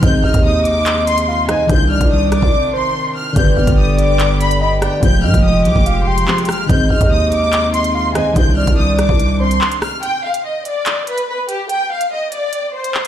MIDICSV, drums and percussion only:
0, 0, Header, 1, 2, 480
1, 0, Start_track
1, 0, Key_signature, -3, "minor"
1, 0, Tempo, 416667
1, 33, Time_signature, 4, 2, 24, 8
1, 15062, End_track
2, 0, Start_track
2, 0, Title_t, "Drums"
2, 32, Note_on_c, 9, 42, 86
2, 33, Note_on_c, 9, 36, 123
2, 147, Note_off_c, 9, 42, 0
2, 148, Note_off_c, 9, 36, 0
2, 392, Note_on_c, 9, 42, 83
2, 393, Note_on_c, 9, 36, 100
2, 508, Note_off_c, 9, 36, 0
2, 508, Note_off_c, 9, 42, 0
2, 751, Note_on_c, 9, 42, 62
2, 867, Note_off_c, 9, 42, 0
2, 992, Note_on_c, 9, 42, 79
2, 994, Note_on_c, 9, 39, 126
2, 1107, Note_off_c, 9, 42, 0
2, 1109, Note_off_c, 9, 39, 0
2, 1236, Note_on_c, 9, 42, 77
2, 1352, Note_off_c, 9, 42, 0
2, 1356, Note_on_c, 9, 42, 75
2, 1471, Note_off_c, 9, 42, 0
2, 1713, Note_on_c, 9, 37, 108
2, 1713, Note_on_c, 9, 42, 90
2, 1828, Note_off_c, 9, 37, 0
2, 1828, Note_off_c, 9, 42, 0
2, 1952, Note_on_c, 9, 42, 84
2, 1953, Note_on_c, 9, 36, 122
2, 2067, Note_off_c, 9, 42, 0
2, 2068, Note_off_c, 9, 36, 0
2, 2313, Note_on_c, 9, 36, 97
2, 2313, Note_on_c, 9, 42, 82
2, 2428, Note_off_c, 9, 36, 0
2, 2428, Note_off_c, 9, 42, 0
2, 2672, Note_on_c, 9, 42, 68
2, 2673, Note_on_c, 9, 37, 87
2, 2787, Note_off_c, 9, 42, 0
2, 2788, Note_off_c, 9, 37, 0
2, 2792, Note_on_c, 9, 36, 88
2, 2908, Note_off_c, 9, 36, 0
2, 3872, Note_on_c, 9, 42, 83
2, 3873, Note_on_c, 9, 36, 120
2, 3987, Note_off_c, 9, 42, 0
2, 3988, Note_off_c, 9, 36, 0
2, 4232, Note_on_c, 9, 42, 84
2, 4233, Note_on_c, 9, 36, 99
2, 4347, Note_off_c, 9, 42, 0
2, 4348, Note_off_c, 9, 36, 0
2, 4591, Note_on_c, 9, 42, 62
2, 4706, Note_off_c, 9, 42, 0
2, 4832, Note_on_c, 9, 42, 80
2, 4833, Note_on_c, 9, 39, 127
2, 4947, Note_off_c, 9, 42, 0
2, 4948, Note_off_c, 9, 39, 0
2, 5076, Note_on_c, 9, 42, 78
2, 5191, Note_off_c, 9, 42, 0
2, 5196, Note_on_c, 9, 42, 77
2, 5311, Note_off_c, 9, 42, 0
2, 5553, Note_on_c, 9, 37, 105
2, 5553, Note_on_c, 9, 42, 87
2, 5668, Note_off_c, 9, 37, 0
2, 5669, Note_off_c, 9, 42, 0
2, 5792, Note_on_c, 9, 42, 82
2, 5793, Note_on_c, 9, 36, 121
2, 5907, Note_off_c, 9, 42, 0
2, 5908, Note_off_c, 9, 36, 0
2, 6152, Note_on_c, 9, 36, 95
2, 6152, Note_on_c, 9, 42, 86
2, 6268, Note_off_c, 9, 36, 0
2, 6268, Note_off_c, 9, 42, 0
2, 6511, Note_on_c, 9, 42, 67
2, 6627, Note_off_c, 9, 42, 0
2, 6633, Note_on_c, 9, 36, 88
2, 6748, Note_off_c, 9, 36, 0
2, 6752, Note_on_c, 9, 42, 75
2, 6867, Note_off_c, 9, 42, 0
2, 7116, Note_on_c, 9, 42, 76
2, 7231, Note_off_c, 9, 42, 0
2, 7232, Note_on_c, 9, 39, 119
2, 7347, Note_off_c, 9, 39, 0
2, 7353, Note_on_c, 9, 42, 60
2, 7433, Note_off_c, 9, 42, 0
2, 7433, Note_on_c, 9, 42, 59
2, 7472, Note_on_c, 9, 37, 107
2, 7473, Note_on_c, 9, 46, 64
2, 7513, Note_off_c, 9, 42, 0
2, 7513, Note_on_c, 9, 42, 60
2, 7588, Note_off_c, 9, 37, 0
2, 7588, Note_off_c, 9, 46, 0
2, 7628, Note_off_c, 9, 42, 0
2, 7712, Note_on_c, 9, 42, 82
2, 7713, Note_on_c, 9, 36, 124
2, 7828, Note_off_c, 9, 36, 0
2, 7828, Note_off_c, 9, 42, 0
2, 8072, Note_on_c, 9, 36, 96
2, 8073, Note_on_c, 9, 42, 81
2, 8188, Note_off_c, 9, 36, 0
2, 8188, Note_off_c, 9, 42, 0
2, 8431, Note_on_c, 9, 42, 61
2, 8546, Note_off_c, 9, 42, 0
2, 8671, Note_on_c, 9, 42, 78
2, 8672, Note_on_c, 9, 39, 123
2, 8786, Note_off_c, 9, 42, 0
2, 8787, Note_off_c, 9, 39, 0
2, 8915, Note_on_c, 9, 42, 80
2, 9030, Note_off_c, 9, 42, 0
2, 9035, Note_on_c, 9, 42, 74
2, 9151, Note_off_c, 9, 42, 0
2, 9392, Note_on_c, 9, 37, 109
2, 9393, Note_on_c, 9, 42, 89
2, 9507, Note_off_c, 9, 37, 0
2, 9508, Note_off_c, 9, 42, 0
2, 9631, Note_on_c, 9, 42, 84
2, 9632, Note_on_c, 9, 36, 125
2, 9746, Note_off_c, 9, 42, 0
2, 9747, Note_off_c, 9, 36, 0
2, 9992, Note_on_c, 9, 36, 97
2, 9992, Note_on_c, 9, 42, 86
2, 10107, Note_off_c, 9, 36, 0
2, 10107, Note_off_c, 9, 42, 0
2, 10351, Note_on_c, 9, 42, 67
2, 10352, Note_on_c, 9, 37, 90
2, 10466, Note_off_c, 9, 42, 0
2, 10468, Note_off_c, 9, 37, 0
2, 10472, Note_on_c, 9, 36, 88
2, 10588, Note_off_c, 9, 36, 0
2, 10593, Note_on_c, 9, 42, 76
2, 10708, Note_off_c, 9, 42, 0
2, 10956, Note_on_c, 9, 42, 74
2, 11071, Note_off_c, 9, 42, 0
2, 11073, Note_on_c, 9, 39, 121
2, 11188, Note_off_c, 9, 39, 0
2, 11192, Note_on_c, 9, 42, 73
2, 11307, Note_off_c, 9, 42, 0
2, 11312, Note_on_c, 9, 37, 111
2, 11313, Note_on_c, 9, 46, 64
2, 11427, Note_off_c, 9, 37, 0
2, 11428, Note_off_c, 9, 46, 0
2, 11552, Note_on_c, 9, 42, 80
2, 11667, Note_off_c, 9, 42, 0
2, 11913, Note_on_c, 9, 42, 81
2, 12028, Note_off_c, 9, 42, 0
2, 12271, Note_on_c, 9, 42, 59
2, 12387, Note_off_c, 9, 42, 0
2, 12511, Note_on_c, 9, 42, 76
2, 12512, Note_on_c, 9, 39, 123
2, 12626, Note_off_c, 9, 42, 0
2, 12627, Note_off_c, 9, 39, 0
2, 12755, Note_on_c, 9, 42, 76
2, 12870, Note_off_c, 9, 42, 0
2, 12875, Note_on_c, 9, 42, 73
2, 12990, Note_off_c, 9, 42, 0
2, 13232, Note_on_c, 9, 42, 86
2, 13348, Note_off_c, 9, 42, 0
2, 13472, Note_on_c, 9, 42, 80
2, 13587, Note_off_c, 9, 42, 0
2, 13833, Note_on_c, 9, 42, 80
2, 13948, Note_off_c, 9, 42, 0
2, 14191, Note_on_c, 9, 42, 65
2, 14307, Note_off_c, 9, 42, 0
2, 14431, Note_on_c, 9, 42, 77
2, 14546, Note_off_c, 9, 42, 0
2, 14795, Note_on_c, 9, 42, 73
2, 14910, Note_off_c, 9, 42, 0
2, 14912, Note_on_c, 9, 39, 118
2, 15027, Note_off_c, 9, 39, 0
2, 15062, End_track
0, 0, End_of_file